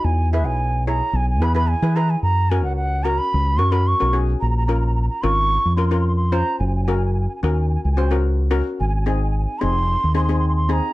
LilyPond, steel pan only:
\new Staff \with { instrumentName = "Steel pan" } { \time 4/4 \key fis \mixolydian \tempo 4 = 110 r8 <e' gis' b'>8 r8 <e' gis' cis''>8 r8 <e' gis' b'>16 <e' gis' b'>16 r16 <e' gis' b'>16 <e' gis' b'>8 | r8 <cis' fis' ais'>8 r8 <cis' fis' ais'>8 r8 <cis' fis' ais'>16 <cis' fis' ais'>16 r16 <cis' fis' ais'>16 <cis' fis' gis'>8 | \key bes \minor r8 <des' f' bes'>8 r8 <des' f' bes'>8 r8 <des' f' bes'>16 <des' f' bes'>8 r16 <des' f' c''>8 | r8 <des' ges' bes'>8 r8 <des' ges' bes'>8 r8 <des' ges' c''>16 <des' ges' bes'>8 r16 <des' ges' bes'>8 |
r8 <c' ees' aes'>8 r8 <c' ees' aes'>8 r8 <c' ees' aes'>16 <c' ees' aes'>8 r16 <c' ees' aes'>8 | }